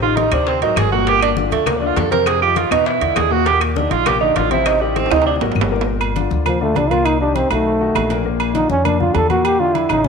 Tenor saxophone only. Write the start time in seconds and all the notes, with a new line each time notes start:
0.02 F4
0.17 D#4
0.32 D4
0.48 C4
0.62 D#4
0.78 G#4
0.92 F#4
1.08 G4
1.22 D4
1.52 A3
1.68 A#3
1.77 D4
1.87 F4
1.97 A4
2.12 A#4
2.27 G#4
2.42 G4
2.56 F4
2.72 D#4
2.86 E4
3.17 G#4
3.31 F#4
3.46 G4
3.61 A#3
3.77 D4
3.91 F4
4.07 G4
4.21 D#4
4.36 F4
4.52 E4
4.67 D#4
4.81 G3
4.96 C4
5.11 D#4
5.26 D4